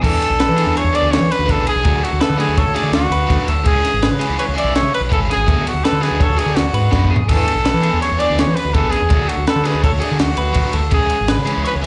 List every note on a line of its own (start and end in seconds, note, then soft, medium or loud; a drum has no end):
0.00 0.19 E2 medium
0.00 0.26 E3 medium
0.00 0.26 B3 medium
0.00 1.84 D4 medium
0.00 0.26 D4 loud
0.00 0.27 G#4 loud
0.00 0.39 A4 loud
0.00 kick loud
0.00 crash loud
0.04 0.79 A4 loud
0.22 ride medium
0.30 0.45 B1 medium
0.40 0.76 B4 medium
0.40 snare loud
0.40 ride loud
0.49 0.64 E3 medium
0.56 0.81 E3 medium
0.56 0.81 B3 medium
0.56 0.80 D4 medium
0.56 0.80 G#4 loud
0.56 snare soft
0.56 ride medium
0.66 0.74 E2 medium
0.77 0.94 C#5 medium
0.77 0.97 C#5 loud
0.77 ride loud
0.84 0.92 E2 medium
0.93 1.17 E3 medium
0.93 1.17 B3 medium
0.93 1.17 D4 medium
0.93 1.17 G#4 loud
0.93 1.12 D5 loud
0.93 1.31 D5 medium
0.93 ride medium
1.02 1.17 D2 medium
1.11 1.33 C#5 loud
1.11 snare loud
1.11 ride loud
1.21 1.28 E3 medium
1.31 1.53 B4 loud
1.31 1.67 B4 medium
1.31 snare soft
1.31 ride medium
1.39 1.54 D2 loud
1.46 1.71 E3 medium
1.46 1.71 B3 medium
1.46 1.71 D4 loud
1.46 1.71 G#4 loud
1.46 kick loud
1.46 snare soft
1.46 ride loud
1.51 1.67 A4 loud
1.58 1.65 B1 medium
1.67 1.85 G#4 medium
1.67 2.05 G#4 loud
1.67 ride medium
1.76 1.83 B1 medium
1.84 2.00 D2 loud
1.84 2.07 F#3 medium
1.84 2.07 A3 medium
1.84 2.08 D4 medium
1.84 2.08 F#4 loud
1.84 2.21 A4 medium
1.84 kick loud
1.84 ride loud
2.04 2.23 F#4 loud
2.04 ride medium
2.13 2.20 D2 medium
2.21 2.38 A4 loud
2.21 2.57 B4 medium
2.21 snare loud
2.21 ride loud
2.30 2.45 D3 medium
2.38 2.62 F#3 medium
2.38 2.62 A3 medium
2.38 2.62 D4 medium
2.38 2.62 F#4 loud
2.38 2.60 G#4 loud
2.38 ride medium
2.48 2.63 D2 medium
2.57 2.76 A4 medium
2.57 2.75 C#5 medium
2.57 kick loud
2.57 ride loud
2.67 2.74 D2 medium
2.74 2.99 F#3 medium
2.74 2.98 A3 medium
2.74 2.98 D4 loud
2.74 2.98 F#4 loud
2.74 2.93 G#4 medium
2.74 3.12 D5 medium
2.74 snare soft
2.74 ride medium
2.83 2.91 D3 medium
2.92 3.08 D2 loud
2.92 3.44 F#4 loud
2.92 snare loud
2.92 ride loud
3.10 3.26 D2 loud
3.10 3.48 B4 medium
3.10 ride medium
3.27 3.37 D2 loud
3.27 3.52 F#3 medium
3.27 3.52 A3 loud
3.27 3.52 D4 loud
3.27 3.52 F#4 loud
3.27 kick loud
3.27 snare soft
3.27 ride loud
3.48 3.66 D2 medium
3.48 3.67 A4 medium
3.48 ride medium
3.63 3.81 C#2 loud
3.63 3.88 E3 medium
3.63 3.88 G#3 medium
3.63 3.88 C#4 medium
3.63 3.89 G#4 loud
3.63 4.09 G#4 loud
3.63 4.02 G#4 loud
3.63 kick loud
3.63 ride loud
3.85 snare soft
3.85 ride medium
3.94 4.09 G#1 medium
4.02 4.38 B4 medium
4.02 snare loud
4.02 ride loud
4.12 4.27 C#3 medium
4.19 4.44 E3 medium
4.19 4.43 G#3 medium
4.19 4.43 C#4 loud
4.19 4.43 G#4 loud
4.19 ride medium
4.29 4.37 C#2 medium
4.38 4.46 B4 medium
4.38 4.57 C#5 medium
4.38 ride loud
4.48 4.56 C#2 medium
4.54 4.80 E3 medium
4.54 4.80 G#3 medium
4.54 4.79 C#4 medium
4.54 4.79 G#4 medium
4.54 4.74 D5 loud
4.54 4.93 E5 medium
4.54 ride medium
4.64 4.80 B1 medium
4.75 4.92 C#5 loud
4.75 snare loud
4.75 ride loud
4.83 4.91 C#3 medium
4.94 5.30 B4 medium
4.94 5.02 B4 loud
4.94 ride medium
5.00 5.16 B1 medium
5.09 5.34 E3 medium
5.09 5.34 G#3 medium
5.09 5.34 C#4 medium
5.09 5.34 G#4 loud
5.09 5.20 A4 loud
5.09 kick loud
5.09 ride loud
5.19 5.27 G#1 medium
5.30 5.48 G#4 medium
5.30 5.64 G#4 loud
5.30 snare soft
5.30 ride medium
5.36 5.44 G#1 medium
5.46 5.63 D2 loud
5.46 5.70 F#3 medium
5.46 5.70 B3 loud
5.46 5.70 D4 loud
5.46 5.70 F#4 loud
5.46 5.84 A4 loud
5.46 kick loud
5.46 ride loud
5.67 5.86 F#4 medium
5.67 ride medium
5.74 5.82 D2 medium
5.84 6.04 A4 medium
5.84 6.19 B4 medium
5.84 snare loud
5.84 ride loud
5.92 6.08 D3 medium
6.01 6.25 F#3 medium
6.01 6.25 B3 medium
6.01 6.25 D4 loud
6.01 6.25 F#4 loud
6.01 6.24 G#4 medium
6.01 snare soft
6.01 ride medium
6.11 6.26 D2 medium
6.20 6.40 A4 medium
6.20 6.39 C#5 medium
6.20 kick loud
6.20 ride loud
6.29 6.36 D2 medium
6.37 6.62 F#3 medium
6.37 6.61 B3 medium
6.37 6.61 D4 medium
6.37 6.61 F#4 loud
6.37 6.57 G#4 medium
6.37 6.74 D5 medium
6.37 ride medium
6.46 6.54 D3 medium
6.56 6.71 D2 loud
6.56 7.10 F#4 medium
6.56 snare loud
6.56 ride loud
6.73 6.90 G#2 medium
6.73 7.10 B4 medium
6.73 ride medium
6.91 7.08 F#2 medium
6.91 7.15 F#3 medium
6.91 7.15 B3 loud
6.91 7.16 D4 loud
6.91 7.16 F#4 loud
6.91 kick loud
6.91 snare medium
7.05 7.29 E2 medium
7.05 kick medium
7.11 7.28 G#4 medium
7.16 floor tom loud
7.28 7.44 E2 medium
7.28 7.52 E3 medium
7.28 7.52 B3 medium
7.28 7.52 D4 medium
7.28 7.53 G#4 medium
7.28 7.65 A4 loud
7.28 7.98 A4 loud
7.28 kick loud
7.28 crash loud
7.28 ride loud
7.48 ride medium
7.55 7.71 B1 medium
7.65 8.01 B4 medium
7.65 snare loud
7.65 ride loud
7.74 7.89 E3 medium
7.82 8.07 E3 medium
7.82 8.06 B3 medium
7.82 8.06 D4 medium
7.82 8.06 G#4 loud
7.82 ride medium
7.93 8.00 E2 medium
8.02 8.21 C#5 loud
8.02 8.20 C#5 medium
8.02 snare soft
8.02 ride loud
8.12 8.19 E2 medium
8.19 8.43 E3 medium
8.19 8.43 B3 medium
8.19 8.43 D4 medium
8.19 8.42 G#4 loud
8.19 8.41 D5 loud
8.19 8.56 D5 medium
8.19 ride medium
8.30 8.45 D2 medium
8.39 8.57 C#5 loud
8.39 snare loud
8.39 ride loud
8.47 8.55 E3 medium
8.55 8.75 B4 medium
8.55 8.92 B4 medium
8.55 snare soft
8.55 ride medium
8.65 8.80 D2 medium
8.74 8.97 E3 medium
8.74 8.98 B3 medium
8.74 8.98 D4 medium
8.74 8.98 G#4 medium
8.74 8.92 A4 loud
8.74 kick loud
8.74 ride loud
8.83 8.91 B1 medium
8.90 9.30 G#4 loud
8.90 9.11 G#4 medium
8.90 snare soft
8.90 ride medium
9.02 9.09 E2 medium
9.09 9.26 D2 loud
9.09 9.33 F#3 medium
9.09 9.34 A3 medium
9.09 9.34 D4 loud
9.09 9.34 F#4 loud
9.09 9.47 A4 loud
9.09 kick loud
9.09 ride loud
9.29 9.47 F#4 medium
9.29 ride medium
9.37 9.45 D2 medium
9.47 9.67 A4 medium
9.47 9.83 B4 medium
9.47 snare loud
9.47 ride loud
9.56 9.71 D3 medium
9.64 9.88 F#3 medium
9.64 9.89 A3 loud
9.64 9.88 D4 loud
9.64 9.88 F#4 loud
9.64 9.83 G#4 medium
9.64 snare soft
9.64 ride medium
9.74 9.89 D2 medium
9.84 9.92 A4 medium
9.84 10.02 C#5 medium
9.84 kick loud
9.84 ride loud
9.92 10.00 D2 medium
10.00 10.25 F#3 medium
10.00 10.25 A3 medium
10.00 10.24 D4 loud
10.00 10.24 F#4 medium
10.00 10.22 G#4 medium
10.00 10.37 D5 medium
10.00 ride medium
10.11 10.19 D3 medium
10.19 10.35 D2 loud
10.19 10.74 F#4 medium
10.19 snare loud
10.19 ride loud
10.37 10.53 D2 medium
10.37 10.74 B4 medium
10.37 ride medium
10.53 10.63 D2 loud
10.53 10.78 F#3 medium
10.53 10.78 A3 medium
10.53 10.78 D4 loud
10.53 10.78 F#4 loud
10.53 kick loud
10.53 ride loud
10.73 10.92 D2 medium
10.73 10.93 A4 medium
10.73 ride medium
10.91 11.08 C#2 loud
10.91 11.15 E3 medium
10.91 11.15 G#3 loud
10.91 11.15 C#4 loud
10.91 11.16 G#4 loud
10.91 11.29 G#4 medium
10.91 11.36 G#4 loud
10.91 kick loud
10.91 ride loud
11.10 ride medium
11.21 11.36 G#1 medium
11.28 11.64 B4 medium
11.28 snare loud
11.28 ride loud
11.38 11.53 C#3 loud
11.46 11.70 E3 medium
11.46 11.70 G#3 loud
11.46 11.70 C#4 loud
11.46 11.70 G#4 loud
11.46 ride medium
11.57 11.64 C#2 medium
11.65 11.75 B4 medium
11.65 11.82 C#5 medium
11.65 ride loud
11.75 11.82 C#2 medium
11.82 11.86 E3 medium
11.82 11.86 G#3 medium
11.82 11.86 C#4 medium
11.82 11.86 G#4 medium
11.82 11.86 E5 medium